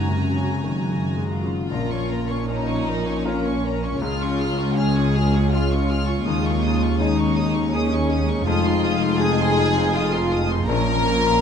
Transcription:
Already playing: F#1 F#2 C#3 G#3 D#4 F#4 G#4 C#5 G#5 A#5
0.08 C3 C#4 A#4
0.36 C#3
0.49 G#4
0.64 D#3
0.89 C#3 A#4
1.17 G#3
1.30 F#3 F4
1.44 C#3
1.70 A#1 A#2 A#3 C#4 A#4 A#5
1.89 C#4 C#5 C#6
1.98 F3
2.09 A#3 A#4 A#5
2.24 A#3
2.28 C#4 C#5 C#6
2.49 A#3 C#4 D#4 F4 A#4 A#5
2.67 C#4 C#5 C#6
2.74 C#5
2.86 A#3 A#4 A#5
3.00 F4
3.06 C#4 C#5 C#6
3.25 A#3 C#4 F4 A#4 C#5 A#5
3.45 C#4 C#5 C#6
3.52 F4
3.65 A#3 A#4 A#5
3.77 A#3
3.83 C#4 C#5 C#6
4.01 C#2 C#3 G#3 F4 G#4 F6
4.22 C#4 F4 C#6
4.28 C#4
4.40 F4 G#4 F6
4.52 G#3
4.58 C#4 F4 C#6
4.77 C#4 F4 G#4 F6
4.96 C#4 F4 C#6
5.03 C#5
5.15 F4 G#4 F6
5.27 F4
5.33 C#4 F4 C#6
5.52 F4 G#4 C#5 F6
5.70 C#4 F4 C#6
5.77 F4
5.89 F4 G#4 F6
6.03 G#3
6.07 C#4 F4 C#6
6.26 D#2 D#3 C#4 D#4 G#4 D#6
6.45 C#4 D#4 C#6
6.52 D#4
6.63 D#4 G#4 D#6
6.76 G#3
6.82 C#4 D#4 C#6
6.99 C#4 D#4 G#4 D#6
7.17 C#4 D#4 C#6
7.25 C#5
7.35 D#4 G#4 D#6
7.49 C#4 G#4
7.53 D#4 C#6
7.72 C#4 D#4 G#4 C#5 D#6
7.90 C#4 D#4 C#6
7.98 G#4
8.08 D#4 G#4 D#6
8.23 G#3
8.28 C#4 D#4 C#6
8.45 F1 F2 F3 G#3 D#4 F4 G#4 D#6
8.65 D#4 F4 C6
8.72 G#3
8.83 F4 G#4 D#6
8.96 F4
9.02 D#4 F4 C6
9.20 D#4 F4 G#4 D#5 D#6
9.38 D#4 F4 C6
9.45 G#4
9.57 F4 G#4 D#6
9.70 D#5
9.75 D#4 F4 C6
9.93 F4 G#4 D#6
10.12 D#4 F4 C6
10.20 D#5
10.31 F4 G#4 D#6
10.44 F4
10.49 D#4 F4 C6
10.67 A#1 A#2 F3 C#4 A#4 A#5
10.89 A#3
10.95 F3
11.07 C#4
11.21 A#3
11.25 F4

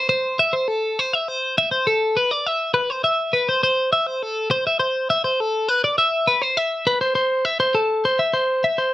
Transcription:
0.09 C5
0.39 E5
0.53 C5
0.68 A4
0.99 C5
1.13 E5
1.28 C5
1.58 E5
1.71 C5
1.87 A4
2.17 B4
2.31 D5
2.47 E5
2.74 B4
2.90 C5
3.04 E5
3.33 B4
3.49 C5
3.63 C5
3.93 E5
4.07 C5
4.23 A4
4.51 C5
4.67 E5
4.80 C5
5.10 E5
5.24 C5
5.40 A4
5.69 B4
5.84 D5
5.98 E5
6.28 B4
6.42 C5
6.57 E5
6.87 B4
7.01 C5
7.15 C5
7.45 E5
7.60 C5
7.75 A4
8.05 C5
8.19 E5
8.34 C5
8.64 E5
8.78 C5

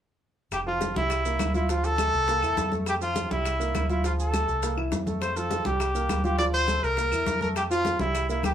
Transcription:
0.51 F1 G4, high bongo, high conga, claves, maracas
0.66 F3 F4, high conga
0.81 high bongo, high conga, maracas
0.96 C2 G3 E4 G4, high conga, maracas
1.10 high bongo, high conga, claves, maracas
1.25 A#3 A#4, high conga, maracas
1.39 D2, high bongo, low bongo, high conga, claves, maracas
1.54 E4 F4 F5, high conga, maracas
1.69 F3 F4, high bongo, maracas
1.84 A4, high bongo, high conga, maracas
1.98 A3 A4, high bongo, high conga, claves, maracas
2.13 C2, high bongo, maracas
2.28 A#3 A#4, high bongo, high conga, maracas
2.42 E2 E3 E4, high conga, claves, maracas
2.57 F2, high bongo, low bongo, high conga, maracas
2.71 A3 A4, high bongo, high conga, maracas
2.86 G4, high bongo, high conga, claves, maracas
3.01 F3 F4, high conga, maracas
3.16 high bongo, high conga, maracas
3.30 C2 G3 E4 G4, high conga, maracas
3.45 high bongo, high conga, claves, maracas
3.60 A#3 A#4, high conga, maracas
3.75 D2, high bongo, low bongo, high conga, claves, maracas
3.90 E4 F4 F5, high conga, maracas
4.04 F3 F4, high bongo, high conga, maracas
4.19 A4, high bongo, high conga, maracas
4.33 A3 A4, high bongo, high conga, claves, maracas
4.48 C2, high bongo, maracas
4.63 A#3 A#4, high bongo, high conga, maracas
4.77 E3 E4, high conga, claves
4.92 F2, high bongo, low bongo, high conga, maracas
5.06 A3 A4, high bongo, high conga, maracas
5.21 C5, high bongo, high conga, claves, maracas
5.36 F3 F4 A4, high conga, maracas
5.51 high bongo, high conga, maracas
5.65 C2 G3 G4, high conga, maracas
5.80 high bongo, high conga, claves, maracas
5.95 A#3 A#4, high conga, maracas
6.09 D2, high bongo, low bongo, high conga, claves, maracas
6.24 F4 G4 F5, high conga, maracas
6.38 F3 F4 D5, high bongo, high conga, maracas
6.53 C5, high bongo, high conga
6.68 A3 A4, high bongo, high conga, claves, maracas
6.83 C2 A#4, high bongo, maracas
6.97 A#3 A#4, high bongo, high conga, maracas
7.12 E2 E3 E4, high conga, claves, maracas
7.26 F2, high bongo, low bongo, high conga, maracas
7.41 A3 A4 A#4, high bongo, high conga, maracas
7.56 G4, high bongo, high conga, claves, maracas
7.71 F3 F4, high conga, maracas
7.85 high bongo, high conga, maracas
7.99 C2 G3 E4 G4, high conga, maracas
8.14 high bongo, high conga, claves, maracas
8.29 A#3 E4 A#4, high conga, maracas
8.43 D2 G4, high bongo, low bongo, high conga, claves, maracas

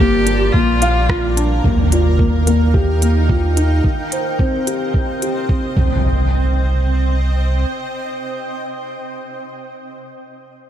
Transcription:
Already playing: G1 G4 A#4 D5
0.00 A#3
0.26 G4, closed hi-hat
0.52 A#1 A#3 F4, kick
0.69 F5
0.82 F5, closed hi-hat
1.09 F4, kick, cross-stick
1.36 D4, closed hi-hat
1.63 D#2 A#3 D#4, kick, impact
1.79 G5
1.92 F4, closed hi-hat
2.19 A#3, kick
2.47 A#3, closed hi-hat
2.74 G4, kick
3.02 A#3, closed hi-hat
3.29 F4, kick
3.56 D#4, closed hi-hat
3.84 C4, kick
3.92 D#5
4.11 C5, closed hi-hat
4.39 C4, kick
4.67 G4, closed hi-hat
4.94 C4, kick
5.22 G4, closed hi-hat
5.49 C4, kick
5.77 C2 C4, kick, impact
5.86 C5
6.21 D#5
6.29 G5

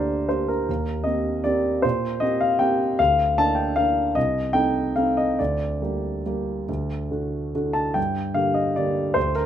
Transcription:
Already playing: D2 A#3 D4 G4 A#4 D5
0.29 A#3 D4 G4 C5
0.48 A#4
0.69 D#2
1.04 A#3 C4 G4 D#5
1.44 A#3 C4 G4 D5
1.82 A#2 C5
2.20 A#3 C4 G4 D#5
2.41 F5
2.59 A#3 C4 G4 G5
2.99 D2 F5
3.38 A#3 D4 A5
3.55 G5
3.76 A#3 D4 F5
4.15 C2 D#5
4.53 A3 C4 D#4 G5
4.96 A3 C4 D#4 F5
5.17 D#5
5.39 D2 D5
5.82 G3 A#3 G4
6.26 G3 A#3 G4
6.69 D2
7.11 D3 A3 F#4
7.55 D3 A3 F#4
7.73 A5
7.94 G2 G5
8.34 D3 A#3 G4 F5
8.54 D#5
8.76 D3 A#3 G4 D5
9.14 D2 C5
9.35 A#4

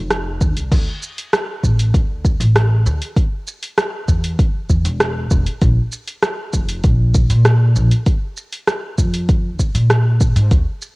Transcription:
Already playing: F1
0.10 cross-stick, open hi-hat, shaker
0.41 D#2, kick, shaker
0.56 C2, open hi-hat, shaker
0.72 D2, kick, open hi-hat, crash, shaker
1.03 shaker
1.18 open hi-hat, shaker
1.33 cross-stick, open hi-hat, shaker
1.63 A1, kick, shaker
1.79 open hi-hat, shaker
1.94 D2, kick, open hi-hat, shaker
2.25 kick, shaker
2.40 A1, open hi-hat, shaker
2.56 cross-stick, open hi-hat, shaker
2.86 D2, shaker
3.02 open hi-hat, shaker
3.17 kick, open hi-hat, shaker
3.48 shaker
3.63 open hi-hat, shaker
3.78 cross-stick, open hi-hat, shaker
4.08 E2, kick, shaker
4.24 open hi-hat, shaker
4.39 kick, open hi-hat, shaker
4.70 E2, kick, shaker
4.85 E1, open hi-hat, shaker
5.00 cross-stick, open hi-hat, shaker
5.31 E1, kick, shaker
5.46 open hi-hat, shaker
5.62 A#1, kick, open hi-hat, shaker
5.92 shaker
6.08 open hi-hat, shaker
6.23 cross-stick, open hi-hat, shaker
6.53 F1, kick, shaker
6.69 open hi-hat, shaker
6.84 A#1, kick, open hi-hat, shaker
7.15 kick, shaker
7.30 A#2, open hi-hat, shaker
7.45 cross-stick, open hi-hat, shaker
7.76 A#1, shaker
7.91 open hi-hat, shaker
8.06 kick, open hi-hat, shaker
8.37 shaker
8.52 open hi-hat, shaker
8.67 cross-stick, open hi-hat, shaker
8.98 F2, kick, shaker
9.14 open hi-hat, shaker
9.29 kick, open hi-hat, shaker
9.59 C2, kick, shaker
9.75 A#2, open hi-hat, shaker
9.90 cross-stick, open hi-hat, shaker
10.21 kick, shaker
10.36 G#2, open hi-hat, shaker
10.51 D2, kick, open hi-hat, shaker
10.82 shaker

